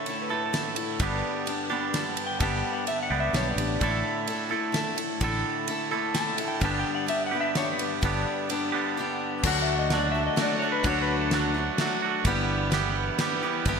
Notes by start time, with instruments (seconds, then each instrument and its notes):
Already playing: clean electric guitar A2 D3 A3 E4 A4
0.00 electric slide guitar C#5
0.06 steel-string acoustic guitar D3 A3 E4 A4, ride
0.22 electric slide guitar B4
0.29 steel-string acoustic guitar A3 E4 A4
0.34 clean electric guitar A2 D3
0.46 electric slide guitar A4
0.53 steel-string acoustic guitar D3 A3 E4 A4, snare, ride
0.68 electric slide guitar A4
0.75 steel-string acoustic guitar A3 E4 A4, ride
1.00 fingered electric bass G1, steel-string acoustic guitar G2 D3 G3 B3 D4 G4, electric slide guitar B4, kick, ride
1.46 steel-string acoustic guitar G3 B3 D4 G4, ride
1.69 clean electric guitar G2 D3, steel-string acoustic guitar G3 B3 D4 G4
1.93 steel-string acoustic guitar G3 B3 D4 G4, electric slide guitar A5, snare, ride
2.17 ride
2.26 electric slide guitar G5
2.40 fingered electric bass G1, steel-string acoustic guitar G2 D3 G3 B3 D4 G4, electric slide guitar A5, kick, ride
2.56 electric slide guitar G5
2.73 electric slide guitar F#5
2.87 steel-string acoustic guitar G3 B3 D4 G4, electric slide guitar E5, ride
3.03 electric slide guitar F#5
3.10 fingered electric bass C#2, clean electric guitar G2 D3 G3 B3 D4 G4
3.20 electric slide guitar E5
3.33 fingered electric bass B1, steel-string acoustic guitar G3 B3 D4 G4, electric slide guitar C#5, snare, ride
3.51 electric slide guitar D5
3.56 fingered electric bass A1, steel-string acoustic guitar D4 G4, ride
3.60 steel-string acoustic guitar G3 B3
3.80 fingered electric bass A1, steel-string acoustic guitar A2 D3 A3 E4 A4, kick, ride
4.27 steel-string acoustic guitar D3 A3 E4 A4, ride
4.49 steel-string acoustic guitar A3 E4 A4
4.54 clean electric guitar A2 D3
4.72 steel-string acoustic guitar D3 A3 E4, snare, ride
4.76 steel-string acoustic guitar A4
4.96 steel-string acoustic guitar A3 E4 A4, ride
5.20 fingered electric bass A1, steel-string acoustic guitar A2 D3 A3 E4 A4, kick, ride
5.67 steel-string acoustic guitar D3 A3 E4 A4, ride
5.91 clean electric guitar A2 D3, steel-string acoustic guitar A3 E4 A4
6.14 steel-string acoustic guitar D3 A3 E4 A4, electric slide guitar A5, snare, ride
6.37 steel-string acoustic guitar A3 E4 A4, ride
6.48 electric slide guitar G5
6.60 fingered electric bass G1, steel-string acoustic guitar G2 D3 G3 B3 D4 G4, kick, ride
6.64 electric slide guitar A5
6.80 electric slide guitar G5
6.95 electric slide guitar F#5
7.07 steel-string acoustic guitar G3 B3 D4 G4, electric slide guitar E5, ride
7.26 electric slide guitar F#5
7.32 clean electric guitar G2 D3, steel-string acoustic guitar G3 B3 D4 G4
7.41 electric slide guitar E5
7.55 steel-string acoustic guitar G3 B3 D4 G4, electric slide guitar C#5, snare, ride
7.72 electric slide guitar B4
7.78 steel-string acoustic guitar G3 B3 D4 G4, ride
8.01 fingered electric bass G1, steel-string acoustic guitar G2 D3 G3 B3 D4 G4, kick, ride
8.49 steel-string acoustic guitar G3 B3 D4 G4, ride
8.72 clean electric guitar D3 G3 B3 D4 G4
8.76 clean electric guitar G2
8.97 steel-string acoustic guitar G3 B3 D4 G4
9.43 fingered electric bass D2, steel-string acoustic guitar D3 F#3 A3 D4 F#4, kick, crash
9.48 electric slide guitar F#5
9.62 electric slide guitar E5
9.79 electric slide guitar D#5
9.90 clean electric guitar D3, steel-string acoustic guitar F#3 A3 D4 F#4, snare, ride
9.95 electric slide guitar D5
10.11 steel-string acoustic guitar F#4, electric slide guitar E5
10.16 steel-string acoustic guitar A3 D4
10.26 electric slide guitar D#5
10.36 steel-string acoustic guitar F#3 A3 D4 F#4, snare, ride
10.42 electric slide guitar D5
10.59 steel-string acoustic guitar F#4, electric slide guitar C#5
10.64 steel-string acoustic guitar A3 D4
10.72 electric slide guitar B4
10.83 fingered electric bass D2, steel-string acoustic guitar D3 F#3 A3 D4 F#4, kick, ride
10.89 electric slide guitar C#5
11.02 electric slide guitar B4
11.19 electric slide guitar A4
11.31 clean electric guitar D3, steel-string acoustic guitar F#3 A3 D4 F#4, snare, ride
11.35 electric slide guitar F#4
11.54 steel-string acoustic guitar A3 D4 F#4
11.78 steel-string acoustic guitar F#3 A3 D4 F#4, snare, ride
12.02 clean electric guitar A3 D4 F#4
12.25 fingered electric bass G1, steel-string acoustic guitar G2 D3 E3 G3 B3 G4, kick, ride
12.71 clean electric guitar G2 D3, steel-string acoustic guitar E3 G3 B3 G4, snare, ride
13.18 steel-string acoustic guitar E3 G3 B3 G4, snare, ride
13.43 steel-string acoustic guitar E3 G3 B3 G4
13.65 fingered electric bass G1, steel-string acoustic guitar G2 D3 E3 G3 B3 G4, kick, ride